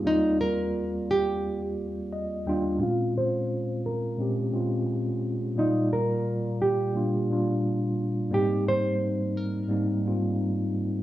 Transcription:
X:1
M:4/4
L:1/16
Q:"Swing 16ths" 1/4=87
K:Bbmix
V:1 name="Nylon-string guitar"
E2 B4 G3 z6 z | F2 c4 B3 z6 z | E2 B4 G3 z6 z | G2 c4 B3 z6 z |]
V:2 name="Tine electric piano"
[CA] z8 z3 e2 g2 | z16 | z16 | z16 |]
V:3 name="Tine electric piano"
[E,,G,B,Fd]6 z8 [E,,G,B,DF]2 | [B,,A,C_DF]6 z2 [B,,A,CDG]2 [B,,A,CDF]4 z2 | [B,,_G,=G,B,Fd]6 z2 [B,,G,B,DF]2 [B,,G,B,DF]4 z2 | [A,,G,B,CE]6 z2 [A,,G,B,CE]2 [A,,G,B,CF]4 z2 |]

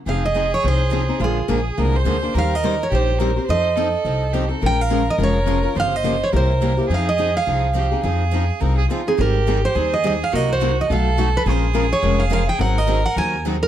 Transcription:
X:1
M:4/4
L:1/8
Q:"Swing" 1/4=211
K:Fm
V:1 name="Steel-string acoustic guitar"
f e2 d c4 | A6- A z | f e2 d c4 | e6- e z |
g f2 e d4 | f e2 d c4 | f e2 f4- f- | f6 z A |
B3 c2 e e f | e c2 e ^e2 z =B | c3 d2 f f g | _g e2 g a2 z B |]
V:2 name="Violin"
A8 | F2 A2 B c3 | B4 G2 B2 | c2 =A4 G A |
B8 | c4 B4 | A6 G2 | A4 B A F2 |
G4 A4 | _G4 =A4 | A8 | B6- B z |]
V:3 name="Steel-string acoustic guitar"
[F,CEA] z [F,CEA] z [F,CEA] z [F,CEA] [CEA] | [=D,F,B,=DA] z [D,F,B,DA] z [D,F,B,DA] z [D,F,B,DA] [B,DA] | [E,G,CGc] z [E,G,CGc] z [E,G,CGc] z [E,G,CGc] [CGc] | [F,CE=A] z [F,CEA] z [F,CEA] z [F,CEA] [CEA] |
[F,A,DFB] z [F,A,DFB] z [F,A,DFB] z [F,A,DFB] [DFB] | [D,F,B,FG] z [D,F,B,FG] z [C,G,B,=EG] z [C,G,B,EG] [B,EG] | [F,CEA] z [F,CEA] z [F,CEA] z [F,CEA] [CEA] | [F,CEA] z [F,CEA] z [F,CEA] z [F,CEA] [CEA] |
[E,G,CEA] z [E,G,CEA] z [E,G,CEA] z [E,G,CEA] z | [C,_G,B,EB] z [C,G,B,EB] z [=B,,^F,=A,^D^F] z [B,,F,A,DF] z | [F,A,DFB] z [F,A,DFB] z [F,A,DFB] z [F,A,DFB] z | [E,_G,CEA] z [E,G,CEA] z [E,G,CEA] z [E,G,CEA] z |]
V:4 name="Steel-string acoustic guitar"
[F,CEA] z [F,CEA] z [F,CEA] z [F,CEA] z | [F,A,=DFB] z [F,A,DFB] z [F,A,DFB] z [F,A,DFB] z | [E,G,B,EGc] z [E,G,B,EGc] z [E,G,B,EGc] z [E,G,B,EGc] z | [F,CE=A] z [F,CEA] z [F,CEA] z [F,CEA] z |
[F,A,DFB] z [F,A,DFB] z [F,A,DFB] z [F,A,DFB] z | [D,F,B,FG] z [D,F,B,FG] z [C,G,B,=EG] z [C,G,B,EG] z | [F,CEA] z [F,CEA] z [F,CEA] z [F,CEA] z | [F,CEA] z [F,CEA] z [F,CEA] z [F,CEA] z |
[E,G,CEA] z [E,G,CEA] z [E,G,CEA] z [E,G,CEA] z | [C,_G,B,EB] z [C,G,B,EB] z [=B,,^F,=A,^D^F=B] z [B,,F,A,DFB] z | [F,A,DFB] z [F,A,DFB] z [F,A,DFB] z [F,A,DFB] z | [E,_G,CEA] z [E,G,CEA] z [E,G,CEA] z [E,G,CEA] z |]
V:5 name="Upright bass" clef=bass
F,,,4 C,,4 | B,,,2 B,,,2 C,,2 =D,,2 | E,,4 B,,,4 | F,,4 C,,4 |
B,,,4 F,,,4 | G,,,4 C,,4 | F,,4 C,,4 | F,,4 C,,2 z2 |
A,,,4 E,,4 | C,,4 =B,,,4 | B,,,4 F,,,4 | A,,,4 E,,4 |]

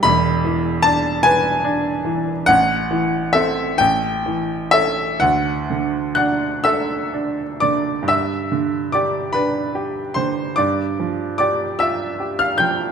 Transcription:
X:1
M:6/8
L:1/16
Q:3/8=48
K:G
V:1 name="Grand piano"
b4 a2 ^g6 | f4 e2 g4 e2 | f4 [ff']2 [ee']4 [dd']2 | [ee']4 [dd']2 [Bb]4 [cc']2 |
[dd']4 [dd']2 [ee']3 [=f=f'] [gg']2 |]
V:2 name="Grand piano" clef=bass
[E,,,E,,]2 E,2 D2 B2 D2 E,2 | A,,,2 E,2 [CA]2 A,,,2 E,2 [^CA]2 | D,,2 D,2 D2 A2 D2 D,2 | G,,2 D,2 G2 D2 G2 D,2 |
G,,2 =F,2 G2 =F2 G2 F,2 |]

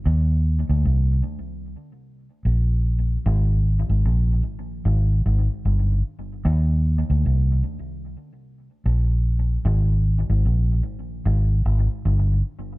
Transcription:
X:1
M:4/4
L:1/16
Q:"Swing 16ths" 1/4=75
K:Eb
V:1 name="Fingered electric bass" clef=bass
E,,3 D,, C,,2 z6 B,,,4 | A,,,3 A,,, B,,,2 z2 A,,,2 A,,, z G,,,2 z2 | E,,3 D,, C,,2 z6 B,,,4 | A,,,3 A,,, B,,,2 z2 A,,,2 A,,, z G,,,2 z2 |]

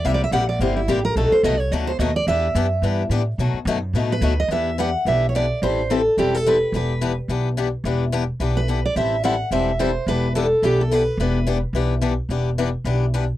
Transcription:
X:1
M:4/4
L:1/16
Q:"Swing" 1/4=215
K:Em
V:1 name="Steel-string acoustic guitar"
(3e2 d2 e2 f2 d2 c2 E2 G2 _B2 | A2 c2 ^d2 ^c2 =d2 =c2 ^d2 =d2 | e12 z4 | z8 z2 B4 ^d2 |
e4 f4 e3 ^c d4 | c4 A4 G2 A2 B4 | B6 z8 z2 | z8 z2 B4 d2 |
e4 f4 e4 c4 | B4 A4 G2 A2 B4 | B6 z8 z2 | z16 |]
V:2 name="Steel-string acoustic guitar"
[C,G,_B,EG]2 z2 [C,G,B,EG]2 z2 [C,G,B,EG]2 z2 [C,G,B,EG]2 z2 | [B,,F,A,^DF]2 z2 [B,,F,A,DF]2 z2 [B,,F,A,DF]2 z2 [B,,F,A,DF]2 z2 | [E,B,DG]2 z2 [E,B,DG]2 z2 [E,B,DG]2 z2 [E,B,DG]2 z2 | [B,,F,A,^DF]2 z2 [B,,F,A,DF]2 z2 [B,,F,A,DF]2 z2 [B,,F,A,DF]2 z2 |
[E,B,DG]2 z2 [E,B,DG]2 z2 [E,B,DG]2 z2 [E,B,DG]2 z2 | [E,G,CEA]2 z2 [E,G,CEA]2 z2 [E,G,CEA]2 z2 [E,G,CEA]2 z2 | [E,B,DG]2 z2 [E,B,DG]2 z2 [E,B,DG]2 z2 [E,B,DG]2 z2 | [E,B,DG]2 z2 [E,B,DG]2 z2 [E,B,DG]2 z2 [E,B,DG]2 z2 |
[E,G,CEA]2 z2 [E,G,CEA]2 z2 [E,G,CEA]2 z2 [E,G,CEA]2 z2 | [E,B,DG]2 z2 [E,B,DG]2 z2 [E,B,DG]2 z2 [E,B,DG]2 z2 | [E,B,DG]2 z2 [E,B,DG]2 z2 [E,B,DG]2 z2 [E,B,DG]2 z2 | [E,B,DG]2 z2 [E,B,DG]2 z2 [E,B,DG]2 z2 [E,B,DG]2 z2 |]
V:3 name="Upright bass" clef=bass
C,,4 _B,,,4 G,,,4 A,,,4 | B,,,2 z2 C,,4 D,,4 ^D,,4 | E,,4 F,,4 G,,4 A,,4 | B,,2 z2 F,,4 A,,4 D,,4 |
E,,8 B,,,8 | A,,,8 E,,,8 | E,,,8 B,,,8 | E,,,8 B,,,8 |
A,,,8 E,,,8 | E,,,8 B,,,8 | E,,,8 B,,,8 | E,,,8 B,,,8 |]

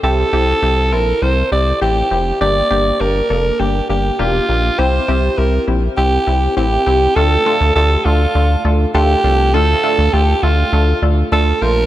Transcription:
X:1
M:4/4
L:1/16
Q:1/4=101
K:Dm
V:1 name="Alto saxophone"
A6 B2 c2 d2 G4 | d4 B4 G2 G2 F4 | c4 B2 z2 G4 G4 | A4 A2 F4 z2 G4 |
A4 G2 F4 z2 A2 B2 |]
V:2 name="Analog polysynth"
[CEG]2 [CEG]2 [CEG]2 [CEA]2 [CEB]2 [CEG]2 [CEG]2 [CEG]2 | [B,DG]2 [B,DG]2 [B,DG]2 [B,DA]2 [B,DG]2 [B,DG]2 [B,DG]2 [B,DG]2 | [CEG]2 [CEG]2 [CEG]2 [CEG]2 [CEG]2 [CEG]2 [CEG]2 [CEG]2 | [A,DFA]2 [A,DFA]2 [A,DFG]2 [A,DFA]2 [A,DFA]2 [A,DFA]2 [A,DFA]2 [A,DFA]2 |
[A,DFA]2 [A,DFA]2 [A,DFA]2 [A,DFA]2 [A,DFA]2 [A,DFA]2 [A,DFA]2 [A,DFc]2 |]
V:3 name="Analog synth bass" clef=bass
C,,2 C,,2 C,,2 B,,,2 C,,2 C,,2 A,,,2 F,,,2 | G,,,2 G,,,2 G,,,2 F,,,2 G,,,2 G,,,2 E,,,2 B,,,2 | C,,2 C,,2 C,,2 B,,,2 C,,2 C,,2 A,,,2 C,,2 | D,,2 z D,, D,,2 D,,2 D,,2 D,,2 D,,2 C,,2 |
D,,2 z D,, D,,2 D,,2 D,,2 D,,2 D,,2 B,,,2 |]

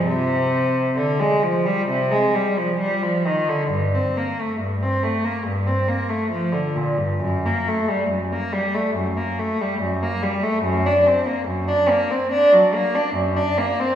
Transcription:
X:1
M:4/4
L:1/16
Q:1/4=70
K:Cm
V:1 name="Cello" clef=bass
C,4 D, A, F, G, C, A, G, F, G, F, E, D, | [K:Gm] G,, C B, A, G,, C A, B, G,, C B, A, F, D, B,, G,, | ^F,, B, A, G, F,, B, G, A, F,, B, A, G, F,, B, G, A, | ^F,, D C B, F,, D B, C D ^F, B, D F,, D B, C |]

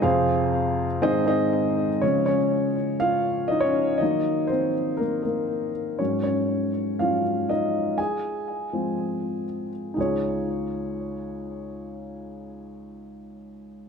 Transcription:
X:1
M:4/4
L:1/16
Q:1/4=121
K:Db
V:1 name="Upright piano"
[CFAcf]6 z2 [CEAce]2 [CEAce]4- [CEAce] z | [Dd]2 [Dd]4 z2 [Ff]4 [Ee] [Dd]3 | [Ee]4 [Cc]4 [B,B]2 [B,B]4 z2 | [Dd]2 [Dd]6 [Ff]4 [Ee]4 |
[Aa]12- [Aa]2 z2 | [EFAd]16- | [EFAd]16 |]
V:2 name="Upright piano" clef=bass
[F,,C,]8 [A,,E,]8 | [D,F,A,]2 z12 z2 | [E,G,B,]6 z8 z2 | [A,,G,]6 z2 [A,,G,D]2 z6 |
z6 [F,A,C]6 z4 | D,,16- | D,,16 |]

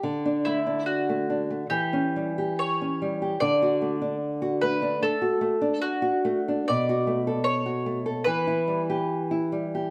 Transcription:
X:1
M:4/4
L:1/16
Q:1/4=74
K:D
V:1 name="Mandolin"
z2 E2 F4 G4 c4 | d6 B2 A4 F4 | d4 c4 B8 |]
V:2 name="Nylon-string guitar"
D, D A, D2 A, D A, E, C G, G2 C G, G | D, F A, D2 F A, D A, F A, D2 F A, D | B,, F A, A2 F A, A E, E G, G2 E G, G |]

